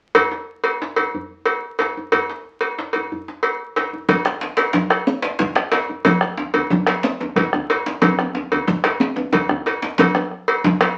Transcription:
0.15 cowbell medium
0.15 djembe slap soft
0.15 djembe bass medium
0.31 djembe slap medium
0.64 cowbell soft
0.82 djembe slap medium
0.96 cowbell soft
0.96 djembe slap soft
0.96 djembe tone medium
1.15 djembe slap soft
1.15 djembe bass medium
1.46 cowbell soft
1.46 djembe slap soft
1.79 cowbell soft
1.79 djembe slap medium
1.97 djembe tone soft
2.12 cowbell soft
2.12 djembe slap soft
2.12 djembe bass medium
2.30 djembe slap medium
2.61 cowbell soft
2.78 djembe slap medium
2.93 cowbell soft
2.93 djembe slap soft
2.93 djembe tone soft
3.12 djembe slap soft
3.12 djembe bass medium
3.28 djembe slap soft
3.43 cowbell soft
3.43 djembe slap soft
3.76 cowbell soft
3.76 djembe slap medium
3.93 djembe tone soft
4.09 bombo low medium
4.09 cowbell medium
4.09 high conga medium
4.09 low conga medium
4.09 djembe bass medium
4.25 bombo rim medium
4.25 djembe slap medium
4.41 bombo rim soft
4.41 djembe slap medium
4.57 cowbell soft
4.57 djembe slap medium
4.73 djembe slap medium
4.73 djembe bass medium
4.73 low conga medium
4.90 bombo rim medium
4.90 cowbell soft
4.90 djembe tone soft
5.07 high conga medium
5.22 djembe slap medium
5.24 djembe slap soft
5.39 bombo low medium
5.39 djembe slap medium
5.39 djembe bass medium
5.55 bombo rim medium
5.55 djembe slap medium
5.72 cowbell soft
5.72 djembe slap medium
5.73 djembe slap medium
5.89 high conga soft
5.89 djembe tone medium
6.05 bombo low medium
6.05 cowbell medium
6.05 high conga medium
6.05 djembe bass medium
6.05 low conga medium
6.21 bombo rim medium
6.21 djembe slap medium
6.37 djembe tone loud
6.54 cowbell soft
6.54 djembe bass medium
6.70 bombo low medium
6.70 djembe slap medium
6.70 low conga medium
6.70 djembe bass medium
6.87 bombo rim medium
6.87 cowbell soft
6.87 djembe slap medium
6.87 djembe tone medium
7.03 djembe slap medium
7.03 high conga medium
7.20 djembe slap medium
7.20 djembe tone medium
7.36 bombo low medium
7.36 cowbell soft
7.36 djembe tone loud
7.36 low conga medium
7.36 djembe bass medium
7.53 bombo rim medium
7.53 djembe bass medium
7.70 cowbell soft
7.70 djembe slap medium
7.86 djembe slap medium
7.86 djembe tone medium
7.86 high conga soft
8.02 bombo low medium
8.02 cowbell medium
8.02 djembe slap medium
8.02 high conga medium
8.02 low conga medium
8.02 djembe bass medium
8.19 bombo rim medium
8.19 djembe slap medium
8.19 djembe tone medium
8.35 bombo rim soft
8.35 djembe tone medium
8.52 cowbell soft
8.52 djembe bass medium
8.67 bombo low medium
8.67 djembe slap medium
8.67 djembe bass medium
8.67 low conga medium
8.84 bombo rim medium
8.84 cowbell soft
8.84 djembe slap medium
8.84 djembe tone medium
9.00 djembe slap medium
9.00 high conga medium
9.16 djembe slap medium
9.16 djembe tone medium
9.32 bombo low medium
9.32 cowbell soft
9.32 djembe tone medium
9.32 djembe bass medium
9.32 low conga medium
9.49 bombo rim medium
9.49 djembe bass medium
9.66 cowbell soft
9.66 djembe slap medium
9.82 djembe slap medium
9.82 high conga soft
9.82 djembe tone medium
9.98 bombo low medium
9.98 cowbell medium
9.98 djembe slap medium
9.98 djembe slap soft
9.98 high conga medium
9.98 low conga medium
9.98 djembe bass medium
10.15 bombo rim medium
10.15 djembe slap medium
10.15 djembe tone medium
10.31 bombo rim soft
10.48 bombo rim soft
10.48 cowbell soft
10.64 bombo low medium
10.64 djembe slap medium
10.64 low conga medium
10.64 djembe bass medium
10.80 bombo rim medium
10.80 cowbell soft
10.80 djembe slap soft
10.80 djembe slap medium
10.80 djembe tone medium
10.80 high conga soft

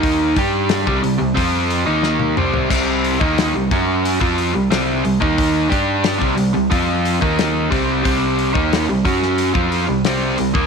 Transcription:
0.00 0.34 D#2 loud
0.00 0.37 D#3 medium
0.00 0.37 A#3 medium
0.00 0.37 D#4 medium
0.00 kick medium
0.00 open hi-hat medium
0.36 0.84 G2 medium
0.36 0.86 G3 medium
0.36 0.87 D4 medium
0.36 0.87 G4 medium
0.36 kick medium
0.36 open hi-hat soft
0.69 snare loud
0.69 open hi-hat medium
0.87 1.03 C2 medium
0.87 1.02 C3 medium
0.87 1.02 G3 medium
0.87 kick loud
1.03 1.20 C2 medium
1.03 1.17 C3 medium
1.03 1.18 G3 medium
1.03 open hi-hat soft
1.19 1.37 C2 medium
1.19 1.35 C3 medium
1.19 1.35 G3 medium
1.35 1.84 F2 medium
1.35 1.85 F3 medium
1.35 1.85 C4 medium
1.35 1.86 F4 medium
1.35 kick medium
1.35 open hi-hat medium
1.70 open hi-hat soft
1.86 2.34 D#2 medium
1.86 2.36 D#3 medium
1.86 2.36 A#3 medium
1.86 2.36 D#4 medium
2.03 snare soft
2.20 high tom medium
2.37 2.69 C2 medium
2.37 2.69 C3 medium
2.37 2.69 G3 medium
2.37 2.69 C4 medium
2.37 mid tom medium
2.54 floor tom medium
2.70 3.17 C2 medium
2.70 3.20 C3 medium
2.70 3.20 G3 medium
2.70 3.20 C4 loud
2.70 kick medium
2.70 open hi-hat medium
2.70 crash medium
3.04 open hi-hat soft
3.20 3.52 D#2 medium
3.20 3.53 D#3 medium
3.20 3.53 A#3 medium
3.20 3.53 D#4 loud
3.20 kick loud
3.38 snare loud
3.38 open hi-hat medium
3.54 3.70 C2 medium
3.54 3.72 C3 medium
3.54 3.72 G3 medium
3.71 4.18 F#2 medium
3.71 4.20 F#3 medium
3.71 4.20 C#4 loud
3.71 4.21 F#4 medium
3.71 kick loud
3.71 open hi-hat soft
4.05 open hi-hat medium
4.20 4.53 F2 medium
4.20 4.53 F3 medium
4.20 4.53 C4 medium
4.20 4.54 F4 loud
4.20 kick medium
4.38 open hi-hat soft
4.54 4.70 C2 medium
4.54 4.69 C3 medium
4.54 4.70 G3 medium
4.70 5.03 C2 medium
4.70 5.03 C3 medium
4.70 5.03 G3 medium
4.70 5.04 C4 medium
4.70 snare loud
4.70 open hi-hat medium
5.04 5.21 C2 medium
5.04 5.20 C3 medium
5.04 5.20 G3 medium
5.04 open hi-hat soft
5.20 5.68 D#2 loud
5.20 5.70 D#3 medium
5.20 5.69 A#3 medium
5.20 5.70 D#4 medium
5.20 kick loud
5.38 kick loud
5.38 open hi-hat medium
5.69 6.18 G2 medium
5.69 6.18 G3 medium
5.69 6.20 D4 medium
5.69 6.20 G4 medium
5.69 kick medium
5.69 open hi-hat soft
6.04 snare loud
6.04 open hi-hat medium
6.19 6.37 C2 medium
6.19 6.35 C3 medium
6.19 6.36 G3 medium
6.19 kick medium
6.36 6.54 C2 medium
6.36 6.53 C3 medium
6.36 6.53 G3 medium
6.36 open hi-hat soft
6.54 6.71 C2 medium
6.54 6.70 C3 medium
6.54 6.71 G3 medium
6.71 7.18 F2 medium
6.71 7.20 F3 medium
6.71 7.20 C4 medium
6.71 7.21 F4 medium
6.71 kick loud
6.71 open hi-hat medium
7.05 open hi-hat soft
7.21 7.69 D#2 medium
7.21 7.70 D#3 medium
7.21 7.70 A#3 medium
7.21 7.70 D#4 medium
7.21 kick medium
7.39 snare loud
7.39 open hi-hat medium
7.70 8.03 C2 medium
7.70 8.02 C3 medium
7.70 8.03 G3 medium
7.70 8.03 C4 loud
7.70 kick loud
7.70 open hi-hat soft
8.03 8.52 C2 medium
8.03 8.53 C3 loud
8.03 8.54 G3 medium
8.03 8.54 C4 loud
8.03 kick loud
8.03 open hi-hat medium
8.39 open hi-hat soft
8.54 8.86 D#2 medium
8.54 8.87 D#3 medium
8.54 8.87 A#3 medium
8.54 8.87 D#4 medium
8.54 kick loud
8.73 snare loud
8.73 open hi-hat medium
8.88 9.04 C2 medium
8.88 9.04 C3 medium
8.88 9.05 G3 medium
9.05 9.52 F#2 medium
9.05 9.54 F#3 medium
9.05 9.54 C#4 medium
9.05 9.54 F#4 medium
9.05 kick medium
9.05 open hi-hat soft
9.22 snare soft
9.38 open hi-hat medium
9.54 9.86 F2 medium
9.54 9.87 F3 medium
9.54 9.87 C4 medium
9.54 9.87 F4 medium
9.54 kick loud
9.72 open hi-hat medium
9.87 10.04 C2 medium
9.87 10.04 C3 medium
9.87 10.05 G3 medium
10.05 10.36 C2 medium
10.05 10.37 C3 medium
10.05 10.37 G3 medium
10.05 10.38 C4 medium
10.05 snare loud
10.05 open hi-hat medium
10.38 10.55 C2 medium
10.38 10.54 C3 medium
10.38 10.55 G3 medium
10.38 open hi-hat soft
10.55 10.67 D#2 medium
10.55 10.67 D#3 medium
10.55 10.67 A#3 medium
10.55 kick loud

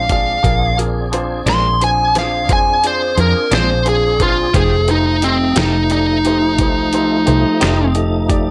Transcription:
0.00 0.40 A#1 medium
0.00 0.39 G#3 medium
0.00 0.39 C4 medium
0.00 0.39 D4 medium
0.09 0.35 D4 soft
0.09 0.36 F4 soft
0.09 0.36 G#4 soft
0.09 0.36 D5 medium
0.09 0.77 F5 loud
0.09 kick medium
0.09 closed hi-hat medium
0.43 1.42 A#1 medium
0.43 4.50 C4 medium
0.43 0.69 D4 medium
0.43 4.50 D4 medium
0.43 0.69 F4 medium
0.43 0.69 G#4 medium
0.43 4.50 G#4 medium
0.43 0.70 A#4 medium
0.43 kick loud
0.43 closed hi-hat medium
0.77 1.03 D4 medium
0.77 1.04 F4 soft
0.77 1.04 G#4 soft
0.77 1.04 A#4 medium
0.77 closed hi-hat medium
1.12 1.38 D4 medium
1.12 1.38 F4 medium
1.12 1.38 G#4 soft
1.12 1.38 C5 medium
1.12 closed hi-hat medium
1.46 2.49 A#1 medium
1.46 1.68 A#2 soft
1.46 1.68 G#3 medium
1.46 1.67 C4 medium
1.46 1.67 D4 medium
1.46 1.72 D4 soft
1.46 1.72 F4 soft
1.46 1.72 G#4 soft
1.46 1.73 A#4 medium
1.46 1.81 C6 loud
1.46 snare medium
1.46 closed hi-hat medium
1.80 2.06 D4 soft
1.80 2.06 F4 soft
1.80 2.07 G#4 soft
1.80 2.07 C5 medium
1.80 2.15 G#5 medium
1.80 closed hi-hat medium
2.15 2.40 D4 medium
2.15 2.40 F4 soft
2.15 2.41 G#4 medium
2.15 2.41 C5 medium
2.15 2.50 F5 medium
2.15 snare soft
2.15 closed hi-hat medium
2.48 3.13 F2 loud
2.48 2.74 D4 medium
2.48 2.74 F4 soft
2.48 2.75 G#4 soft
2.48 2.75 C5 medium
2.48 kick loud
2.48 closed hi-hat medium
2.53 2.84 G#5 medium
2.83 3.09 D4 soft
2.83 3.09 F4 soft
2.83 3.09 G#4 soft
2.83 3.18 C5 medium
2.83 3.09 D5 medium
2.83 closed hi-hat medium
3.17 3.33 F2 medium
3.17 3.42 D4 medium
3.17 3.43 F4 soft
3.17 3.43 G#4 soft
3.17 3.52 A#4 medium
3.17 3.43 C5 medium
3.17 closed hi-hat medium
3.51 4.50 A#1 medium
3.51 3.73 A#2 medium
3.51 3.73 G#3 soft
3.51 3.72 C4 medium
3.51 3.77 D4 medium
3.51 3.72 D4 medium
3.51 3.77 F4 medium
3.51 3.77 G#4 soft
3.51 3.78 C5 medium
3.51 3.86 C5 loud
3.51 snare medium
3.51 closed hi-hat medium
3.85 4.11 D4 soft
3.85 4.11 F4 soft
3.85 4.11 G#4 soft
3.85 4.20 G#4 medium
3.85 4.11 C5 medium
3.85 closed hi-hat medium
4.20 4.45 D4 medium
4.20 4.46 F4 soft
4.20 4.54 F4 medium
4.20 4.46 G#4 soft
4.20 4.46 C5 medium
4.20 kick medium
4.20 closed hi-hat medium
4.53 5.52 F1 medium
4.53 4.74 F3 medium
4.53 8.51 F3 medium
4.53 8.51 A3 medium
4.53 4.75 A3 medium
4.53 4.79 D#4 medium
4.53 8.51 D#4 medium
4.53 4.75 D#4 medium
4.53 4.80 G4 medium
4.53 4.75 G4 medium
4.53 4.88 G#4 medium
4.53 4.80 A4 medium
4.53 4.80 C5 medium
4.53 kick loud
4.53 closed hi-hat medium
4.88 5.13 D#4 medium
4.88 5.23 D#4 medium
4.88 5.14 G4 medium
4.88 5.14 A4 medium
4.88 5.14 C5 medium
4.88 closed hi-hat medium
5.21 5.56 C4 medium
5.21 5.47 D#4 medium
5.21 5.48 G4 soft
5.21 5.48 A4 soft
5.21 5.48 D#5 medium
5.21 closed hi-hat medium
5.56 6.59 F1 medium
5.56 5.77 F3 medium
5.56 5.77 A3 medium
5.56 5.82 D#4 medium
5.56 5.77 D#4 medium
5.56 5.90 D#4 medium
5.56 5.77 G4 medium
5.56 5.82 G4 soft
5.56 5.82 A4 soft
5.56 5.83 D#5 medium
5.56 snare loud
5.56 closed hi-hat medium
5.90 6.16 D#4 soft
5.90 7.92 D#4 medium
5.90 6.16 G4 soft
5.90 6.16 A4 soft
5.90 6.17 D5 medium
5.90 closed hi-hat medium
6.25 6.50 D#4 medium
6.25 6.50 G4 medium
6.25 6.51 A4 medium
6.25 6.51 C5 medium
6.25 closed hi-hat medium
6.58 7.23 C2 loud
6.58 6.85 D#4 medium
6.58 6.85 G4 soft
6.58 6.85 A4 soft
6.58 6.86 C5 medium
6.58 kick loud
6.58 closed hi-hat medium
6.93 7.19 D#4 medium
6.93 7.19 G4 medium
6.93 7.19 A4 medium
6.93 7.19 C5 medium
6.93 closed hi-hat medium
7.26 7.43 C2 medium
7.26 7.52 D#4 medium
7.26 7.52 G4 medium
7.26 7.53 A4 medium
7.26 7.53 C5 medium
7.26 closed hi-hat medium
7.59 8.51 F1 medium
7.59 7.83 F3 medium
7.59 7.83 A3 medium
7.59 7.86 D#4 medium
7.59 7.82 D#4 medium
7.59 7.86 G4 medium
7.59 7.82 G4 medium
7.59 7.87 A4 medium
7.59 7.87 C5 medium
7.59 snare medium
7.59 closed hi-hat medium
7.94 8.20 D#4 medium
7.94 8.21 G4 medium
7.94 8.21 A4 medium
7.94 8.21 D#5 medium
7.94 closed hi-hat medium
8.28 8.51 D#4 medium
8.28 8.51 G4 medium
8.28 8.51 A4 medium
8.28 8.51 D5 medium
8.28 kick medium
8.28 closed hi-hat medium

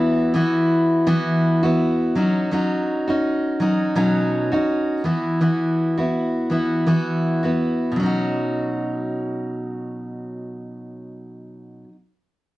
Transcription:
0.00 0.32 E3 medium
0.00 0.33 B3 medium
0.00 0.34 E4 medium
0.00 0.34 F#4 medium
0.34 1.05 E3 medium
0.34 1.07 B3 medium
0.34 1.06 E4 medium
0.34 1.08 F#4 medium
1.07 1.62 E3 medium
1.07 1.63 B3 medium
1.07 1.63 E4 medium
1.07 1.61 F#4 medium
1.63 2.16 B3 medium
1.63 2.16 E4 medium
1.63 2.15 F#4 medium
2.15 2.50 F#3 medium
2.15 2.51 C#4 medium
2.15 2.52 D#4 medium
2.15 2.52 F#4 medium
2.51 3.07 F#3 medium
2.51 3.08 C#4 medium
2.51 3.07 D#4 medium
2.51 3.06 F#4 medium
3.07 3.59 C#4 soft
3.07 3.60 D#4 soft
3.07 3.60 F#4 soft
3.60 3.95 F#3 medium
3.60 3.95 C#4 medium
3.60 3.96 D#4 medium
3.60 3.96 F#4 medium
3.96 4.52 B2 medium
3.96 4.52 F#3 medium
3.96 4.52 C#4 medium
3.96 4.52 D#4 medium
3.96 4.50 F#4 medium
4.52 5.05 C#4 soft
4.52 5.05 D#4 medium
4.52 5.04 F#4 medium
5.04 5.40 E3 medium
5.04 5.40 B3 medium
5.04 5.41 E4 medium
5.04 5.42 F#4 medium
5.41 5.97 E3 soft
5.41 5.97 B3 medium
5.41 5.97 E4 medium
5.41 5.96 F#4 medium
5.97 6.50 B3 soft
5.97 6.51 E4 soft
5.97 6.50 F#4 soft
6.50 6.85 E3 medium
6.50 6.86 B3 soft
6.50 6.86 E4 medium
6.50 6.87 F#4 medium
6.86 7.43 E3 medium
6.86 7.43 B3 medium
6.86 7.43 E4 medium
6.86 7.42 F#4 medium
7.43 7.96 B3 soft
7.43 7.96 E4 soft
7.43 7.95 F#4 soft
7.91 11.84 B2 medium
7.96 11.88 F#3 medium
7.96 11.92 C#4 medium
8.03 11.95 D#4 medium
8.03 11.98 F#4 medium

